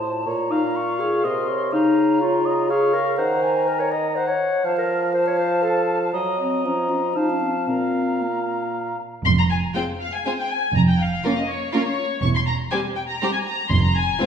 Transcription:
Already playing: bassoon A2, flute A5
0.02 cor anglais C5
0.26 bassoon A#2, cor anglais C#5, flute A#5
0.50 clarinet D#4, cor anglais F5
0.75 clarinet F4, flute C#6
1.00 clarinet G#4
1.24 bassoon C3, clarinet A#4, cor anglais D#5, flute C6
1.49 cor anglais C#5
1.72 bassoon C#3, clarinet D#4, cor anglais F5, flute A#5
2.21 clarinet F4, cor anglais C#5
2.46 cor anglais D#5
2.69 clarinet G#4, cor anglais F5, flute C#6
2.93 clarinet A#4
3.17 bassoon D#3, clarinet C5, cor anglais F#5, flute A#5
3.43 cor anglais G#5
3.67 clarinet A#4
3.80 clarinet C#5
3.91 clarinet D#5
4.15 clarinet C5, cor anglais F#5
4.28 clarinet C#5
4.65 bassoon F3, clarinet C5, cor anglais F5, flute A5
4.78 clarinet A#4
5.14 clarinet C5, cor anglais F5, flute A5
5.27 clarinet C#5
5.38 clarinet C5
5.62 clarinet A4
6.13 bassoon F#3, cor anglais D#5, flute A#5
6.38 clarinet C4, cor anglais D#5
6.64 bassoon F3, clarinet C#4, flute A#5
6.90 clarinet F4
7.15 bassoon F3, clarinet D#4, cor anglais F5, flute A5
7.29 clarinet C#4
7.41 clarinet C4
7.68 bassoon A#2, clarinet C4, cor anglais F5, flute A#5
8.22 clarinet A#3
9.25 double bass section F1, cello section F2, violin section C6
9.39 violin section A#5
9.50 violin section G#5
9.74 viola section G#3 C4, violin section F4 C5 G5
10.00 violin section F5
10.14 violin section G#5
10.25 viola section G#3 C4, violin section F4 C5 G#5
10.39 violin section G5
10.50 violin section G#5
10.75 double bass section F1, cello section F2, violin section A#5
10.88 violin section G5
11.00 violin section F5
11.24 viola section A#3 C#4, violin section F4 A#4
11.37 violin section D#5
11.48 violin section C#5
11.73 viola section A#3 C#4, violin section F4 A#4 F5
11.85 violin section C#5
12.22 double bass section E1, cello section E2, violin section C#6
12.35 violin section C6
12.46 violin section A#5
12.71 viola section G3 C4, violin section G4 C5 G#5
12.96 violin section G5
13.09 violin section A#5
13.20 viola section G3 C4, violin section G4 C5 A#5
13.33 violin section G#5
13.45 violin section A#5
13.69 double bass section F1, cello section F2, violin section C6
13.83 violin section A#5
13.95 violin section G#5
14.20 viola section G#3 C4, violin section F4 C5

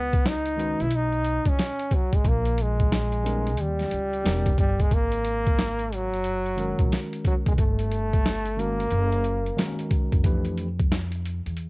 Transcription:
Already playing: upright bass C#2, trombone B3
0.13 kick, closed hi-hat
0.26 trombone D#4, snare, closed hi-hat
0.45 closed hi-hat
0.56 tine electric piano D#3 G#3 C#4 F#4 B4, closed hi-hat
0.80 upright bass B1, trombone E4, closed hi-hat
0.90 closed hi-hat
0.95 trombone D#4
1.12 closed hi-hat
1.25 closed hi-hat
1.45 upright bass C#2, trombone C#4, kick, closed hi-hat
1.59 snare, closed hi-hat
1.79 closed hi-hat
1.91 trombone F#3, kick, closed hi-hat
2.13 upright bass G#1, trombone G#3, kick, closed hi-hat
2.24 upright bass A#1, trombone A#3, kick, closed hi-hat
2.45 closed hi-hat
2.58 closed hi-hat
2.62 trombone G#3
2.80 kick, closed hi-hat
2.92 snare, closed hi-hat
3.12 closed hi-hat
3.23 tine electric piano G3 B3 C#4 D#4 A#4, closed hi-hat
3.47 closed hi-hat
3.57 upright bass D#2, closed hi-hat
3.61 trombone G3
3.79 snare, closed hi-hat
3.91 upright bass C#2, closed hi-hat
4.13 closed hi-hat
4.23 upright bass E1, tine electric piano G3 B3 C#4 D#4 A#4, snare, closed hi-hat
4.46 kick, closed hi-hat
4.58 upright bass G1, trombone G3, kick, closed hi-hat
4.80 trombone G#3, kick, closed hi-hat
4.91 upright bass G#1, trombone A#3, kick, closed hi-hat
5.12 closed hi-hat
5.25 closed hi-hat
5.47 kick, closed hi-hat
5.59 snare, closed hi-hat
5.79 closed hi-hat
5.93 trombone F#3, closed hi-hat
6.13 upright bass F#1, closed hi-hat
6.24 closed hi-hat
6.46 closed hi-hat
6.56 tine electric piano D#3 G#3 C#4 F#4 A#4, closed hi-hat
6.79 upright bass A#1, kick, closed hi-hat
6.92 snare, closed hi-hat
7.13 closed hi-hat
7.25 trombone F#3, kick, closed hi-hat
7.46 upright bass E1, trombone G#3, kick, closed hi-hat
7.58 upright bass G1, trombone A3, kick, closed hi-hat
7.79 closed hi-hat
7.91 closed hi-hat
8.13 kick, closed hi-hat
8.26 snare, closed hi-hat
8.45 closed hi-hat
8.56 tine electric piano D#3 G#3 C#4 F#4 A#4, trombone A#3, closed hi-hat
8.80 closed hi-hat
8.90 upright bass F#1, closed hi-hat
9.12 closed hi-hat
9.24 closed hi-hat
9.46 closed hi-hat
9.56 tine electric piano D#3 G#3 C#4 F#4 A#4, snare, closed hi-hat
9.79 closed hi-hat
9.91 kick, closed hi-hat
10.12 upright bass F#1, kick, closed hi-hat
10.23 upright bass F2, tine electric piano E3 A3 D4 G4 B4, kick, closed hi-hat
10.45 closed hi-hat
10.58 closed hi-hat
10.80 kick, closed hi-hat
10.92 snare, closed hi-hat
11.12 closed hi-hat
11.26 closed hi-hat
11.46 upright bass E2, closed hi-hat
11.57 closed hi-hat

